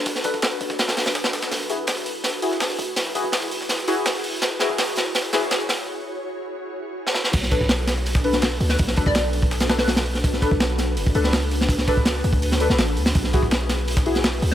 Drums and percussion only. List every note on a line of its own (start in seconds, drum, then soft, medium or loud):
0.06 kick loud
0.06 closed hi-hat medium
0.06 open hi-hat medium
0.15 snare soft
0.24 kick loud
0.24 closed hi-hat medium
0.24 open hi-hat medium
0.34 kick medium
0.42 snare loud
0.42 closed hi-hat medium
0.42 open hi-hat medium
0.52 snare soft
0.61 closed hi-hat medium
0.61 open hi-hat medium
0.70 kick medium
0.70 snare soft
0.79 snare loud
0.79 closed hi-hat medium
0.79 open hi-hat medium
0.88 snare loud
0.88 snare soft
0.88 open hi-hat medium
0.97 snare soft
0.97 snare medium
0.97 closed hi-hat medium
0.97 open hi-hat medium
1.06 snare loud
1.06 open hi-hat medium
1.15 snare loud
1.15 closed hi-hat medium
1.15 open hi-hat medium
1.24 snare loud
1.24 closed hi-hat soft
1.33 snare loud
1.33 closed hi-hat medium
1.33 open hi-hat medium
1.42 snare soft
1.42 snare loud
1.42 closed hi-hat medium
1.51 snare soft
1.51 closed hi-hat medium
1.51 open hi-hat medium
1.70 closed hi-hat medium
1.70 open hi-hat medium
1.87 snare loud
1.87 snare soft
1.87 closed hi-hat medium
1.87 open hi-hat loud
1.97 closed hi-hat soft
2.06 closed hi-hat medium
2.06 open hi-hat medium
2.24 snare medium
2.24 closed hi-hat medium
2.24 open hi-hat medium
2.42 closed hi-hat medium
2.42 open hi-hat medium
2.51 snare soft
2.60 snare loud
2.60 snare medium
2.60 closed hi-hat medium
2.60 open hi-hat medium
2.70 closed hi-hat soft
2.79 open hi-hat medium
2.96 snare medium
2.96 closed hi-hat medium
2.96 open hi-hat medium
3.15 closed hi-hat medium
3.15 open hi-hat medium
3.32 snare medium
3.32 snare loud
3.32 closed hi-hat medium
3.32 open hi-hat medium
3.42 snare soft
3.51 closed hi-hat medium
3.51 open hi-hat medium
3.61 snare soft
3.69 snare medium
3.69 closed hi-hat medium
3.69 open hi-hat medium
3.79 snare soft
3.88 snare soft
3.88 closed hi-hat medium
3.88 open hi-hat medium
4.06 snare loud
4.06 snare medium
4.06 closed hi-hat medium
4.06 open hi-hat medium
4.15 closed hi-hat soft
4.24 closed hi-hat medium
4.24 open hi-hat medium
4.42 snare medium
4.42 closed hi-hat medium
4.42 open hi-hat medium
4.59 snare medium
4.59 closed hi-hat medium
4.59 open hi-hat medium
4.78 snare medium
4.78 snare loud
4.78 closed hi-hat medium
4.78 open hi-hat medium
4.88 closed hi-hat soft
4.96 snare medium
4.96 closed hi-hat medium
4.96 open hi-hat medium
5.15 snare medium
5.15 closed hi-hat medium
5.15 open hi-hat medium
5.33 snare medium
5.33 closed hi-hat medium
5.33 open hi-hat medium
5.42 snare soft
5.51 snare medium
5.51 snare loud
5.51 closed hi-hat loud
5.51 open hi-hat medium
5.60 closed hi-hat soft
5.69 snare medium
5.69 open hi-hat medium
7.07 snare medium
7.14 snare medium
7.24 snare medium
7.33 kick loud
7.33 closed hi-hat medium
7.33 open hi-hat loud
7.33 crash medium
7.43 snare soft
7.51 kick medium
7.51 closed hi-hat medium
7.51 open hi-hat medium
7.61 kick medium
7.69 snare loud
7.69 closed hi-hat medium
7.69 open hi-hat medium
7.79 closed hi-hat soft
7.87 snare medium
7.87 snare loud
7.87 closed hi-hat medium
7.87 open hi-hat medium
7.97 closed hi-hat soft
8.06 closed hi-hat medium
8.06 open hi-hat medium
8.15 kick medium
8.15 snare loud
8.15 closed hi-hat medium
8.24 closed hi-hat soft
8.24 open hi-hat medium
8.33 snare soft
8.33 closed hi-hat medium
8.42 snare loud
8.42 closed hi-hat medium
8.42 open hi-hat medium
8.51 closed hi-hat soft
8.60 open hi-hat medium
8.69 snare soft
8.79 kick loud
8.79 closed hi-hat medium
8.79 open hi-hat medium
8.88 snare medium
8.96 kick medium
8.96 closed hi-hat medium
8.96 open hi-hat medium
9.06 kick loud
9.15 snare loud
9.15 closed hi-hat loud
9.15 open hi-hat loud
9.24 snare soft
9.33 closed hi-hat medium
9.33 open hi-hat medium
9.42 kick loud
9.51 snare loud
9.51 closed hi-hat medium
9.51 open hi-hat medium
9.60 snare loud
9.60 snare medium
9.60 closed hi-hat medium
9.69 snare loud
9.69 closed hi-hat medium
9.69 open hi-hat medium
9.78 snare medium
9.78 closed hi-hat soft
9.78 open hi-hat medium
9.88 snare loud
9.88 open hi-hat medium
9.96 snare loud
9.96 closed hi-hat medium
10.06 closed hi-hat soft
10.06 open hi-hat medium
10.15 snare soft
10.15 open hi-hat medium
10.24 kick loud
10.24 closed hi-hat medium
10.24 open hi-hat medium
10.33 snare soft
10.42 kick medium
10.42 closed hi-hat medium
10.42 open hi-hat medium
10.51 kick medium
10.60 snare loud
10.60 closed hi-hat medium
10.60 open hi-hat medium
10.70 closed hi-hat soft
10.78 snare medium
10.78 closed hi-hat medium
10.78 open hi-hat medium
10.97 closed hi-hat medium
10.97 open hi-hat medium
11.06 kick medium
11.15 closed hi-hat medium
11.15 open hi-hat medium
11.24 snare soft
11.33 snare loud
11.33 closed hi-hat medium
11.33 open hi-hat medium
11.42 closed hi-hat soft
11.51 open hi-hat medium
11.61 snare medium
11.69 kick loud
11.69 closed hi-hat medium
11.69 open hi-hat medium
11.78 snare soft
11.88 kick medium
11.88 closed hi-hat medium
11.88 open hi-hat medium
11.97 kick medium
12.05 snare loud
12.05 closed hi-hat medium
12.05 open hi-hat medium
12.15 snare soft
12.24 closed hi-hat medium
12.24 open hi-hat medium
12.33 kick loud
12.42 closed hi-hat medium
12.42 open hi-hat medium
12.52 snare soft
12.52 snare medium
12.60 snare soft
12.60 closed hi-hat medium
12.60 open hi-hat medium
12.70 snare medium
12.79 snare loud
12.79 closed hi-hat medium
12.79 open hi-hat medium
12.88 closed hi-hat soft
12.97 closed hi-hat medium
12.97 open hi-hat medium
13.06 snare loud
13.06 open hi-hat medium
13.15 kick loud
13.15 closed hi-hat medium
13.15 open hi-hat medium
13.24 snare soft
13.33 kick medium
13.33 closed hi-hat medium
13.33 open hi-hat medium
13.43 kick medium
13.51 snare loud
13.51 closed hi-hat medium
13.51 open hi-hat medium
13.61 closed hi-hat soft
13.69 snare medium
13.69 snare loud
13.69 closed hi-hat medium
13.69 open hi-hat medium
13.79 closed hi-hat soft
13.88 closed hi-hat medium
13.88 open hi-hat medium
13.97 kick loud
13.97 snare loud
13.97 closed hi-hat medium
14.06 closed hi-hat soft
14.06 open hi-hat medium
14.15 snare soft
14.15 closed hi-hat medium
14.24 snare loud
14.24 closed hi-hat medium
14.24 open hi-hat medium
14.33 closed hi-hat soft
14.42 open hi-hat medium